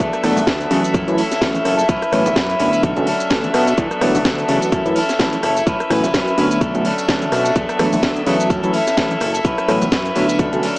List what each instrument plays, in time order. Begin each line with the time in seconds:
Already playing: string section E5
0.00 analog synth bass E2, clean electric guitar F#3 B3 D4 A4, kick, closed hi-hat, shaker
0.13 cross-stick, closed hi-hat, shaker
0.23 analog synth bass E1, tine electric piano E3 F#3 A3 B3 D4, clean electric guitar F#3 B3 D4 A4, cross-stick, open hi-hat, tambourine
0.36 analog synth bass D2, open hi-hat, tambourine, high conga, low conga, shaker
0.47 analog synth bass D2, clean electric guitar B3 D4 A4, kick, snare, closed hi-hat, tambourine, shaker
0.61 closed hi-hat, shaker
0.70 analog synth bass C#3, tine electric piano E3 F#3 A3 C#4 F#4, clean electric guitar F#3 B3 D4 A4, open hi-hat, tambourine
0.83 clean electric guitar B3 D4 A4, closed hi-hat, tambourine, shaker
0.94 analog synth bass F#2, clean electric guitar C#4 E4 A4, kick, closed hi-hat, tambourine, high conga, shaker
1.07 analog synth bass F#2, tine electric piano E3 F#3 A3 C#4 E4, clean electric guitar E4 A4, closed hi-hat, shaker
1.17 clean electric guitar C#4 E4 A4, open hi-hat, tambourine
1.31 snare, closed hi-hat, tambourine, shaker
1.41 tine electric piano E3 F#3 A3 C#4 E4, clean electric guitar C#4 E4 A4, kick, snare, closed hi-hat, shaker
1.55 closed hi-hat, high conga, shaker
1.64 analog synth bass F#1, clean electric guitar C#4 E4 A4, cross-stick, open hi-hat, tambourine
1.78 clean electric guitar E4 A4, closed hi-hat, tambourine, shaker
1.88 analog synth bass A1, clean electric guitar F#3 C#4 E4 B4, kick, closed hi-hat, tambourine, shaker
2.01 clean electric guitar C#4 E4 B4, cross-stick, closed hi-hat, shaker
2.11 analog synth bass A2, tine electric piano E3 F#3 A3 B3 C#4, clean electric guitar F#3 C#4 E4 B4, cross-stick, open hi-hat, tambourine
2.26 analog synth bass F#2, closed hi-hat, tambourine, high conga, low conga, shaker
2.35 analog synth bass F#2, clean electric guitar F#3 C#4 E4 B4, kick, snare, closed hi-hat, tambourine, shaker
2.50 closed hi-hat, shaker
2.59 analog synth bass F#2, tine electric piano D3 F#3 A3 B3 D4, clean electric guitar F#3 C#4 E4 B4, open hi-hat, tambourine
2.72 clean electric guitar C#4 E4 B4, closed hi-hat, tambourine, shaker
2.83 analog synth bass B1, clean electric guitar F#3 C#4 D4 A4, kick, closed hi-hat, tambourine, high conga, shaker
2.96 analog synth bass B1, tine electric piano D3 F#3 A3 B3 C#4, clean electric guitar C#4 D4 A4, closed hi-hat, low conga, shaker
3.06 clean electric guitar F#3 C#4 D4 A4, open hi-hat, tambourine
3.20 closed hi-hat, tambourine, shaker
3.30 tine electric piano D3 F#3 A3 B3 C#4, clean electric guitar F#3 C#4 D4 A4, kick, snare, closed hi-hat, shaker
3.44 closed hi-hat, high conga, shaker
3.53 analog synth bass B2, clean electric guitar F#3 C#4 D4 A4, cross-stick, open hi-hat, tambourine
3.66 clean electric guitar C#4 D4 A4, closed hi-hat, tambourine, shaker
3.77 analog synth bass E2, clean electric guitar F#3 B3 D4 A4, kick, closed hi-hat, shaker
3.91 cross-stick, closed hi-hat, shaker
4.00 analog synth bass E1, tine electric piano E3 F#3 A3 B3 D4, clean electric guitar F#3 B3 D4 A4, cross-stick, open hi-hat, tambourine
4.15 analog synth bass D2, open hi-hat, tambourine, high conga, low conga, shaker
4.24 analog synth bass D2, clean electric guitar F#3 B3 A4, kick, snare, closed hi-hat, tambourine, shaker
4.38 closed hi-hat, shaker
4.48 analog synth bass C#3, tine electric piano E3 F#3 A3 C#4 F#4, clean electric guitar F#3 B3 D4 A4, open hi-hat, tambourine
4.61 clean electric guitar B3 D4 A4, closed hi-hat, tambourine, shaker
4.72 analog synth bass F#2, clean electric guitar C#4 E4 A4, kick, closed hi-hat, tambourine, high conga, shaker
4.85 analog synth bass F#2, tine electric piano E3 F#3 A3 C#4 E4, clean electric guitar E4 A4, closed hi-hat, shaker
4.95 clean electric guitar C#4 E4 A4, open hi-hat, tambourine
5.09 snare, closed hi-hat, tambourine, shaker
5.19 tine electric piano E3 F#3 A3 C#4 E4, clean electric guitar C#4 E4 A4, kick, snare, closed hi-hat, shaker
5.33 closed hi-hat, high conga, shaker
5.42 analog synth bass F#1, clean electric guitar C#4 E4 A4, cross-stick, open hi-hat, tambourine
5.55 clean electric guitar E4 A4, closed hi-hat, tambourine, shaker
5.66 analog synth bass A1, clean electric guitar F#3 C#4 E4 B4, string section E5, kick, closed hi-hat, shaker
5.79 clean electric guitar C#4 E4 B4, cross-stick, closed hi-hat, shaker
5.90 analog synth bass A2, tine electric piano E3 F#3 A3 B3 C#4, clean electric guitar F#3 C#4 E4 B4, cross-stick, open hi-hat, tambourine
6.03 analog synth bass F#2, closed hi-hat, tambourine, high conga, low conga, shaker
6.13 analog synth bass F#2, clean electric guitar F#3 C#4 E4 B4, kick, snare, closed hi-hat, tambourine, shaker
6.27 closed hi-hat, shaker
6.37 analog synth bass F#2, tine electric piano D3 F#3 A3 B3 D4, clean electric guitar F#3 C#4 E4 B4, open hi-hat, tambourine
6.50 clean electric guitar C#4 E4 B4, closed hi-hat, tambourine, shaker
6.61 analog synth bass B1, clean electric guitar F#3 C#4 D4 A4, kick, closed hi-hat, tambourine, high conga, shaker
6.74 analog synth bass B1, tine electric piano D3 F#3 A3 B3 C#4, clean electric guitar C#4 D4 A4, closed hi-hat, low conga, shaker
6.84 clean electric guitar F#3 C#4 D4 A4, open hi-hat, tambourine
6.98 closed hi-hat, tambourine, shaker
7.08 tine electric piano D3 F#3 A3 B3 C#4, clean electric guitar F#3 C#4 D4 A4, kick, snare, closed hi-hat, shaker
7.22 closed hi-hat, high conga, shaker
7.31 analog synth bass B2, clean electric guitar F#3 C#4 D4 A4, cross-stick, open hi-hat, tambourine
7.45 clean electric guitar C#4 D4 A4, closed hi-hat, tambourine, shaker
7.55 analog synth bass E2, clean electric guitar F#3 B3 A4, kick, closed hi-hat, shaker
7.69 cross-stick, closed hi-hat, shaker
7.78 analog synth bass E1, tine electric piano E3 F#3 A3 B3 D4, clean electric guitar F#3 B3 D4 A4, cross-stick, open hi-hat, tambourine
7.93 analog synth bass D2, open hi-hat, tambourine, high conga, low conga, shaker
8.02 analog synth bass D2, clean electric guitar F#3 B3 D4 A4, kick, snare, closed hi-hat, tambourine, shaker
8.16 closed hi-hat, shaker
8.26 analog synth bass C#3, tine electric piano E3 F#3 A3 C#4 F#4, clean electric guitar F#3 B3 D4 A4, open hi-hat, tambourine
8.39 closed hi-hat, tambourine, shaker
8.50 analog synth bass F#2, clean electric guitar C#4 E4 A4, kick, closed hi-hat, tambourine, high conga, shaker
8.63 analog synth bass F#2, tine electric piano E3 F#3 A3 C#4 E4, clean electric guitar E4 A4, closed hi-hat, shaker
8.73 clean electric guitar C#4 E4 A4, open hi-hat, tambourine
8.87 snare, closed hi-hat, tambourine, shaker
8.97 tine electric piano E3 F#3 A3 C#4 E4, clean electric guitar C#4 E4 A4, kick, snare, closed hi-hat, shaker
9.11 closed hi-hat, high conga, shaker
9.20 analog synth bass F#1, clean electric guitar C#4 E4 A4, cross-stick, open hi-hat, tambourine
9.34 clean electric guitar E4 A4, closed hi-hat, tambourine, shaker
9.44 analog synth bass A1, clean electric guitar F#3 C#4 E4 B4, kick, closed hi-hat, tambourine, shaker
9.58 cross-stick, closed hi-hat, shaker
9.68 analog synth bass A2, tine electric piano E3 F#3 A3 B3 C#4, clean electric guitar F#3 C#4 E4 B4, cross-stick, open hi-hat, tambourine
9.81 analog synth bass F#2, closed hi-hat, tambourine, high conga, low conga, shaker
9.91 analog synth bass F#2, clean electric guitar F#3 C#4 E4 B4, kick, snare, closed hi-hat, shaker
10.05 closed hi-hat, shaker
10.15 analog synth bass F#2, tine electric piano D3 F#3 A3 B3 D4, clean electric guitar F#3 C#4 E4 B4, open hi-hat, tambourine
10.28 clean electric guitar C#4 E4 B4, closed hi-hat, tambourine, shaker
10.39 analog synth bass B1, clean electric guitar F#3 C#4 D4 A4, kick, closed hi-hat, tambourine, high conga, shaker
10.52 analog synth bass B1, tine electric piano D3 F#3 A3 B3 C#4, clean electric guitar C#4 D4 A4, closed hi-hat, low conga, shaker
10.62 clean electric guitar F#3 C#4 D4 A4, open hi-hat, tambourine